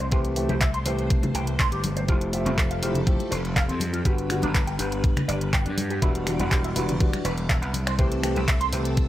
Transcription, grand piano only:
0.12 E3 A3 C4 G4
0.36 E3 A3 C4 G4
0.85 E3 A3 C4 G4
2.08 F3 A3 E4 G4
2.33 F3 A3 G4 E5
2.82 F3 A3 E4 G4
3.07 F3 A3 E4 G4
4.05 D3 G3 B3 F#4
4.30 D3 G3 B3 F#4
4.78 D3 G3 B3
6.02 E3 G3 D4 F#4
6.26 E3 G3 D4 F#4
6.76 E3 G3 D4 F#4
7.00 E3 G3 D4 F#4
7.98 E3 A3 C4 G4
8.23 E3 A3 C4 G4
8.72 E3 A3 C4 G4

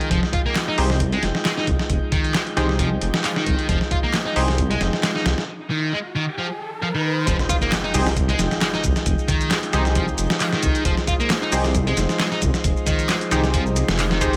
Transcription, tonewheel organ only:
Already playing: F3 G#3 D#4 G5
7.27 F3 G#3 D#4 G5
10.85 C5

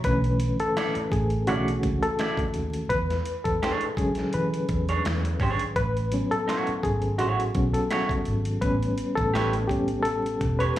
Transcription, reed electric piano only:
0.05 D3 E3 A3 C#4 B4
0.60 A4
1.12 G#4
1.47 D3 E3 A3 C#4 F#4
2.03 A4
2.89 B4
3.44 A4
3.97 D3 F#3 G#3 C#4 G#4
4.34 B4
5.76 B4
6.13 F#3 B3 C#4
6.31 A4
6.83 G#4
7.18 F#4
7.55 F#3 B3 C#4
7.74 A4
8.61 G3 B3 C#4 B4
9.15 A4
9.67 G3 B3 C#4 G4
10.03 A4
10.59 B4

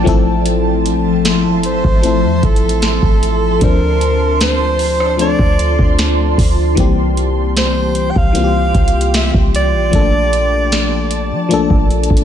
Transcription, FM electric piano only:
0.04 F3 A3 C4 E4
0.09 A4
2.01 F3 A3 C4 E4
2.06 A4
3.59 F3 C4 D4
3.64 C5
5.17 F3 A3 C4 D4
5.22 A4
6.75 E3 G3 A#3 C4
6.80 G4
8.33 E3 G3 A#3 C4
8.37 F4
8.44 G4
9.90 F3 A3 A#3 D4
9.95 A4
11.49 F3 A3 A#3 D4
11.54 A4

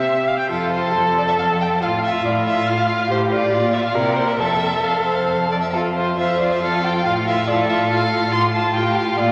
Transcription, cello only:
Already playing: C3
0.50 F2
0.96 F2
1.40 F2
1.84 A2
2.26 A2
2.68 A2
3.10 A2
3.52 A#2
3.95 C3
4.39 F2
4.84 F2
5.29 F2
5.74 F2
6.18 F2
6.62 F2
7.05 A2
7.48 A2
7.91 A2
8.33 A2
8.75 A2
9.18 A#2

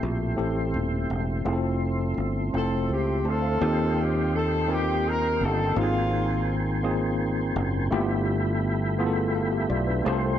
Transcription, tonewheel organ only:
Already playing: A4 E5 G5 C6
1.46 C5
3.61 G4 D#5 G5 C6
5.77 A#4 G#5
7.92 A4 E5 B5
10.07 A4 C5 C6

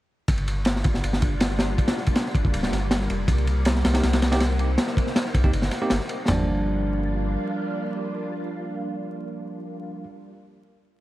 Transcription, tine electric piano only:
3.94 A#3 C4 D#4 G4
4.32 A#3 C4 D#4 G4
5.44 A#3 C4 D#4 G4
5.82 A#3 C4 D#4 G4
6.28 F3 G3 A#3 D4

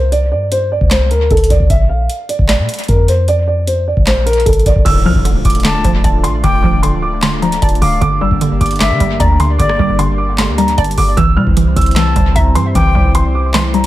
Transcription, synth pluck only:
4.86 D3
5.05 F3
5.25 D3
5.65 D3
5.85 F3
6.04 D5
6.24 D3
6.44 D3
6.64 F3
6.83 D3
7.23 D3
7.42 F3
7.62 D5
7.82 D3
8.01 D3
8.21 G3
8.41 D3
8.81 D3
9.00 G3
9.20 D5
9.40 D3
9.60 D3
9.79 G3
9.99 D3
10.38 D3
10.58 G3
10.78 D5
10.98 D3
11.17 E3
11.37 G3
11.57 E3
11.96 E3
12.16 G3
12.36 E5
12.56 E3
12.75 E3
12.95 G3
13.15 E3
13.54 E3
13.74 G3

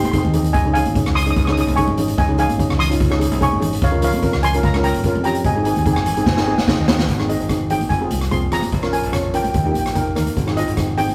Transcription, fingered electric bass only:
0.04 F1
0.24 D#2
0.54 C#2
0.86 G#1
1.07 C#2
1.36 C#2
1.67 C2
1.88 G#1
2.18 C#2
2.50 G#1
2.71 C#2
3.00 C#2
3.31 C2
3.52 G#1
3.82 C#2
4.13 F2
4.34 C#2
4.63 C#2
4.95 G1
5.15 F2
5.45 G#1
5.76 D#2
5.96 G#1
6.26 G#1
6.58 F1
6.78 D#2
7.09 G#1
7.40 G#1
7.90 F1
8.10 C2
8.51 F1
8.73 A#1
9.04 A#1
9.54 D#2
9.76 A#1
10.16 D#2
10.37 G#1
10.68 G#1

